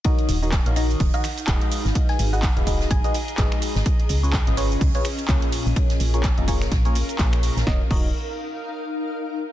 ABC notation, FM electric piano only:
X:1
M:4/4
L:1/16
Q:"Swing 16ths" 1/4=126
K:Ebm
V:1 name="FM electric piano"
[E,EGBde]3 [E,EGBde] z [E,EGBdf] [E,EGBde]3 [E,EGBde] z2 [A,EGAce]4- | [A,EGAce]3 [A,EGAce] z [A,EGAcf] [A,EGAce]3 [A,EGAce] z2 [A,EGAce]4 | z3 [D,DFAcd] z [D,DFAce] [D,DFAcd]3 [D,DFAcd] z2 [B,,DFABd]4- | [B,,DFABd]3 [B,,DFABd] z [B,,DFABe] [B,,DFABd]3 [B,,DFABd] z2 [B,,DFABd]4 |
[EGBde] z [EGBde]2 z12 |]